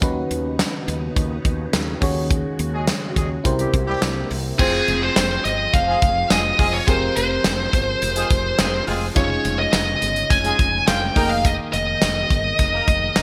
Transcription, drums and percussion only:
0.02 kick loud
0.02 closed hi-hat medium
0.31 closed hi-hat medium
0.59 snare loud
0.59 closed hi-hat medium
0.59 tambourine medium
0.88 closed hi-hat medium
1.16 kick medium
1.16 closed hi-hat medium
1.45 kick loud
1.45 closed hi-hat medium
1.73 snare loud
1.73 closed hi-hat loud
1.73 tambourine medium
2.02 kick medium
2.02 open hi-hat medium
2.30 kick loud
2.30 closed hi-hat medium
2.59 closed hi-hat medium
2.87 snare loud
2.87 closed hi-hat medium
2.87 tambourine medium
3.16 kick medium
3.16 closed hi-hat medium
3.45 kick medium
3.45 closed hi-hat medium
3.59 closed hi-hat medium
3.73 kick medium
3.73 closed hi-hat medium
4.02 snare loud
4.02 closed hi-hat loud
4.02 tambourine medium
4.30 open hi-hat medium
4.59 kick loud
4.59 crash loud
4.88 closed hi-hat medium
5.16 snare loud
5.16 closed hi-hat loud
5.16 tambourine medium
5.45 closed hi-hat medium
5.74 kick medium
5.74 closed hi-hat medium
6.02 kick loud
6.02 closed hi-hat medium
6.30 snare loud
6.30 closed hi-hat loud
6.30 tambourine medium
6.59 kick medium
6.59 open hi-hat medium
6.88 kick loud
6.88 closed hi-hat loud
7.16 closed hi-hat medium
7.44 snare loud
7.44 closed hi-hat loud
7.44 tambourine medium
7.73 kick loud
7.73 closed hi-hat medium
8.02 closed hi-hat medium
8.16 closed hi-hat medium
8.30 kick loud
8.30 closed hi-hat medium
8.59 snare loud
8.59 closed hi-hat loud
8.59 tambourine medium
8.87 open hi-hat medium
9.16 kick loud
9.16 closed hi-hat medium
9.45 closed hi-hat medium
9.73 snare loud
9.73 closed hi-hat medium
9.73 tambourine medium
10.02 closed hi-hat medium
10.16 closed hi-hat medium
10.30 kick loud
10.30 closed hi-hat medium
10.44 closed hi-hat medium
10.59 kick loud
10.59 closed hi-hat medium
10.88 snare loud
10.88 closed hi-hat loud
10.88 tambourine medium
11.16 kick medium
11.16 open hi-hat medium
11.45 kick loud
11.45 closed hi-hat loud
11.73 closed hi-hat medium
12.02 snare loud
12.02 closed hi-hat medium
12.02 tambourine medium
12.30 kick medium
12.30 closed hi-hat medium
12.59 kick medium
12.59 closed hi-hat medium
12.88 kick loud
12.88 closed hi-hat medium
13.16 snare loud
13.16 closed hi-hat loud
13.16 tambourine medium

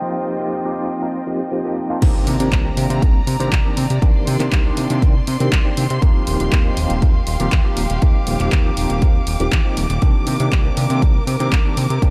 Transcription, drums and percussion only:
2.02 kick loud
2.02 closed hi-hat medium
2.02 crash loud
2.27 open hi-hat loud
2.40 closed hi-hat medium
2.52 kick loud
2.52 clap loud
2.52 closed hi-hat medium
2.77 open hi-hat loud
2.90 closed hi-hat medium
3.02 kick loud
3.02 closed hi-hat medium
3.27 open hi-hat loud
3.40 closed hi-hat medium
3.52 kick loud
3.52 clap loud
3.52 closed hi-hat medium
3.77 open hi-hat loud
3.90 closed hi-hat medium
4.02 kick loud
4.02 closed hi-hat medium
4.27 open hi-hat loud
4.40 clap soft
4.40 closed hi-hat medium
4.52 kick loud
4.52 clap loud
4.52 closed hi-hat medium
4.77 open hi-hat loud
4.90 closed hi-hat medium
5.02 kick loud
5.02 closed hi-hat medium
5.27 open hi-hat loud
5.40 closed hi-hat medium
5.52 kick loud
5.52 clap loud
5.52 closed hi-hat medium
5.77 open hi-hat loud
5.90 closed hi-hat medium
6.02 kick loud
6.02 closed hi-hat medium
6.27 open hi-hat loud
6.40 closed hi-hat medium
6.52 kick loud
6.52 clap loud
6.52 closed hi-hat soft
6.77 open hi-hat loud
6.90 closed hi-hat medium
7.02 kick loud
7.02 closed hi-hat medium
7.27 open hi-hat loud
7.40 closed hi-hat medium
7.52 kick loud
7.52 clap loud
7.52 closed hi-hat medium
7.77 open hi-hat loud
7.90 closed hi-hat medium
8.02 kick loud
8.02 closed hi-hat soft
8.27 open hi-hat loud
8.40 clap soft
8.40 closed hi-hat medium
8.52 kick loud
8.52 clap loud
8.52 closed hi-hat soft
8.77 open hi-hat loud
8.90 closed hi-hat medium
9.02 kick loud
9.02 closed hi-hat soft
9.27 open hi-hat loud
9.40 closed hi-hat medium
9.52 kick loud
9.52 clap loud
9.52 closed hi-hat medium
9.77 open hi-hat loud
9.90 closed hi-hat medium
10.02 kick loud
10.02 closed hi-hat soft
10.27 open hi-hat loud
10.40 closed hi-hat medium
10.52 kick loud
10.52 clap loud
10.52 closed hi-hat soft
10.77 open hi-hat loud
10.90 closed hi-hat medium
11.02 kick loud
11.02 closed hi-hat medium
11.27 open hi-hat loud
11.40 closed hi-hat medium
11.52 kick loud
11.52 clap loud
11.52 closed hi-hat medium
11.77 open hi-hat loud
11.90 closed hi-hat medium
12.02 kick loud
12.02 closed hi-hat medium

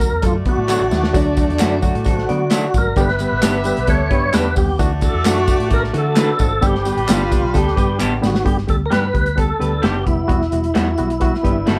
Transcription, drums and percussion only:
0.00 kick medium
0.00 closed hi-hat medium
0.00 tambourine medium
0.22 kick medium
0.22 closed hi-hat loud
0.22 tambourine soft
0.46 kick medium
0.46 closed hi-hat medium
0.69 snare medium
0.69 clap medium
0.69 tambourine medium
0.91 snare medium
0.91 tambourine medium
1.04 snare medium
1.14 kick loud
1.14 closed hi-hat medium
1.14 tambourine medium
1.37 kick medium
1.37 closed hi-hat medium
1.37 tambourine medium
1.50 closed hi-hat soft
1.59 snare loud
1.59 clap loud
1.59 closed hi-hat medium
1.59 tambourine loud
1.82 kick medium
1.82 closed hi-hat medium
1.82 tambourine medium
1.95 closed hi-hat soft
2.04 kick medium
2.04 closed hi-hat loud
2.04 tambourine soft
2.18 snare soft
2.29 closed hi-hat medium
2.50 snare loud
2.50 clap medium
2.50 closed hi-hat medium
2.50 tambourine medium
2.74 kick medium
2.74 closed hi-hat medium
2.74 tambourine medium
2.96 kick loud
2.96 closed hi-hat medium
2.96 tambourine medium
3.08 snare soft
3.19 closed hi-hat medium
3.19 tambourine medium
3.42 snare loud
3.42 clap medium
3.42 closed hi-hat loud
3.42 tambourine loud
3.64 closed hi-hat medium
3.64 tambourine medium
3.77 closed hi-hat medium
3.87 kick loud
3.87 closed hi-hat loud
4.11 kick medium
4.11 closed hi-hat medium
4.33 snare loud
4.33 clap medium
4.33 closed hi-hat medium
4.33 tambourine medium
4.56 kick medium
4.56 open hi-hat soft
4.56 tambourine medium
4.79 kick loud
4.79 closed hi-hat medium
4.79 tambourine medium
5.01 kick medium
5.01 closed hi-hat medium
5.01 tambourine medium
5.25 snare loud
5.25 clap loud
5.25 closed hi-hat medium
5.25 tambourine medium
5.47 kick loud
5.47 closed hi-hat medium
5.47 tambourine medium
5.60 closed hi-hat medium
5.71 kick medium
5.71 closed hi-hat loud
5.84 snare soft
5.94 closed hi-hat medium
6.16 snare loud
6.16 clap medium
6.16 closed hi-hat medium
6.16 tambourine medium
6.39 kick loud
6.39 closed hi-hat medium
6.39 tambourine medium
6.62 kick loud
6.62 closed hi-hat medium
6.62 tambourine medium
6.75 snare soft
6.85 closed hi-hat medium
6.85 tambourine medium
6.98 closed hi-hat soft
7.08 snare loud
7.08 clap loud
7.08 closed hi-hat medium
7.08 tambourine loud
7.32 kick medium
7.32 closed hi-hat medium
7.32 tambourine medium
7.54 kick medium
7.54 closed hi-hat loud
7.54 tambourine soft
7.68 snare soft
7.77 kick medium
7.77 closed hi-hat medium
7.77 tambourine soft
8.00 clap medium
8.00 tambourine medium
8.23 snare medium
8.23 tambourine medium
8.35 snare medium
8.46 kick loud
8.46 closed hi-hat medium
8.58 snare soft
8.69 kick medium
8.69 closed hi-hat medium
8.92 snare loud
8.92 closed hi-hat medium
9.15 kick medium
9.15 closed hi-hat medium
9.26 closed hi-hat medium
9.38 kick medium
9.38 closed hi-hat medium
9.62 closed hi-hat medium
9.83 snare loud
9.83 closed hi-hat medium
10.07 kick medium
10.07 closed hi-hat medium
10.29 kick loud
10.29 closed hi-hat medium
10.41 snare soft
10.52 closed hi-hat medium
10.64 closed hi-hat soft
10.75 snare loud
10.75 closed hi-hat loud
10.98 closed hi-hat medium
11.10 closed hi-hat medium
11.21 kick medium
11.21 closed hi-hat loud
11.34 snare soft
11.45 kick medium
11.45 closed hi-hat medium
11.67 snare loud
11.67 closed hi-hat medium

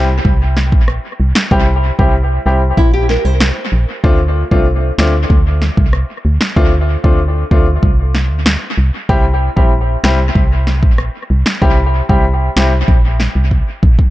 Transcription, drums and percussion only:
0.25 kick medium
0.57 snare medium
0.72 kick medium
0.88 cross-stick medium
1.35 finger snap medium
1.35 snare loud
1.51 kick loud
1.99 kick medium
2.77 kick medium
3.09 snare medium
3.40 finger snap medium
3.40 cross-stick medium
3.40 snare loud
4.04 kick loud
4.51 kick medium
4.99 finger snap medium
4.99 snare loud
5.30 kick medium
5.62 snare medium
5.77 kick medium
5.93 cross-stick medium
6.41 finger snap medium
6.41 snare loud
6.56 kick loud
7.04 kick medium
7.51 kick medium
7.83 kick medium
8.15 snare medium
8.46 finger snap medium
8.46 cross-stick medium
8.46 snare loud
9.09 kick loud
9.57 kick medium
10.04 finger snap medium
10.04 snare loud
10.35 kick medium
10.67 snare medium
10.83 kick medium
10.98 cross-stick medium
11.46 finger snap medium
11.46 snare loud
11.62 kick loud
12.09 kick medium
12.57 finger snap medium
12.57 snare loud
12.88 kick medium
13.20 snare medium
13.51 kick medium
13.83 kick medium
13.99 kick medium

